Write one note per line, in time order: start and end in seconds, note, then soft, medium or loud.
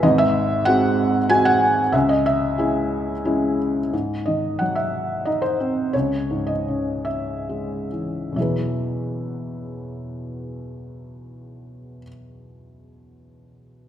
0.03 1.89 G#1 medium
0.03 1.89 G#2 medium
0.03 0.20 D#5 medium
0.18 0.68 E5 loud
0.65 1.17 G#3 medium
0.65 1.18 C4 soft
0.65 1.18 F#4 medium
0.65 1.25 F#5 loud
1.29 1.80 G#3 medium
1.29 1.81 C4 soft
1.29 1.81 F#4 medium
1.29 1.46 G#5 loud
1.45 1.95 F#5 loud
1.92 3.89 C#2 medium
1.92 2.08 E5 medium
2.09 2.26 D#5 medium
2.26 3.56 E5 medium
2.58 3.12 G#3 soft
2.58 3.12 C#4 soft
2.58 3.13 E4 medium
3.25 3.79 G#3 medium
3.25 3.80 C#4 soft
3.25 3.80 E4 medium
3.93 5.90 G#2 soft
4.26 5.56 D#3 soft
4.26 4.60 D#5 medium
4.59 5.91 F#3 soft
4.59 4.76 F#5 medium
4.75 5.27 E5 medium
5.25 5.92 D#4 soft
5.25 5.43 D#5 medium
5.42 5.95 C5 medium
5.60 5.93 C4 soft
5.93 8.34 C#2 soft
5.93 6.50 C#5 medium
6.31 7.88 G#2 soft
6.47 7.07 D#5 medium
6.68 8.34 C#3 soft
7.05 7.87 E5 medium
7.49 8.35 G#3 soft
7.92 8.36 E3 soft
8.32 11.98 E2 soft
8.32 12.00 B2 soft
8.32 12.02 F#3 soft
8.32 12.02 E5 soft
8.38 12.04 E4 soft
8.38 12.06 G#4 soft
8.38 12.08 B4 soft